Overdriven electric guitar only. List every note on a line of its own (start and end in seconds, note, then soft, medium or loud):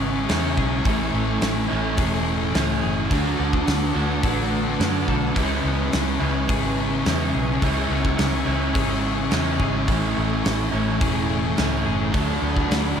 0.00 0.26 C#3 medium
0.00 0.27 G#3 medium
0.00 0.28 C#4 medium
0.00 0.27 E4 medium
0.27 0.83 C#3 medium
0.27 0.84 G#3 medium
0.27 0.84 C#4 medium
0.27 0.84 E4 medium
0.83 1.67 A2 medium
0.83 1.68 E3 medium
0.83 1.70 A3 medium
0.83 1.68 C#4 loud
0.83 1.67 E4 loud
1.68 2.52 A2 medium
1.68 2.52 E3 medium
1.68 2.53 A3 medium
1.68 2.53 C#4 medium
1.68 2.52 E4 medium
2.53 3.09 A2 medium
2.53 3.09 E3 medium
2.53 3.09 A3 medium
2.53 3.10 C#4 medium
2.53 3.10 E4 medium
3.10 3.93 D3 medium
3.10 3.94 A3 medium
3.10 3.94 D4 medium
3.10 3.92 F#4 loud
3.93 4.78 D3 medium
3.93 4.79 A3 medium
3.93 4.78 D4 medium
3.93 4.77 F#4 medium
4.79 5.33 D3 medium
4.79 5.34 A3 medium
4.79 5.35 D4 medium
4.79 5.36 F#4 medium
5.34 6.21 C#3 medium
5.34 6.21 G#3 loud
5.34 6.20 C#4 medium
5.34 6.19 E4 medium
6.19 7.03 C#3 medium
6.19 7.06 G#3 medium
6.19 7.06 C#4 medium
6.19 7.07 E4 medium
7.04 7.60 C#3 medium
7.04 7.62 G#3 medium
7.04 7.63 C#4 medium
7.04 7.63 E4 medium
7.61 8.45 C#3 medium
7.61 8.47 G#3 medium
7.61 8.46 C#4 medium
7.61 8.45 E4 medium
8.45 9.30 C#3 medium
8.45 9.30 G#3 medium
8.45 9.30 C#4 medium
8.45 9.29 E4 medium
9.31 9.86 C#3 medium
9.31 9.87 G#3 medium
9.31 9.87 C#4 medium
9.31 9.87 E4 medium
9.87 10.71 A2 medium
9.87 10.71 E3 medium
9.87 10.73 A3 medium
9.87 10.71 C#4 loud
9.87 10.70 E4 medium
10.71 11.55 A2 medium
10.71 11.56 E3 medium
10.71 11.56 A3 medium
10.71 11.55 C#4 medium
10.71 11.55 E4 medium
11.56 12.11 A2 medium
11.56 12.12 E3 medium
11.56 12.12 A3 medium
11.56 12.13 C#4 medium
11.56 12.13 E4 medium
12.12 12.96 D3 medium
12.12 12.96 F#3 medium
12.12 12.97 A3 loud
12.12 12.96 D4 loud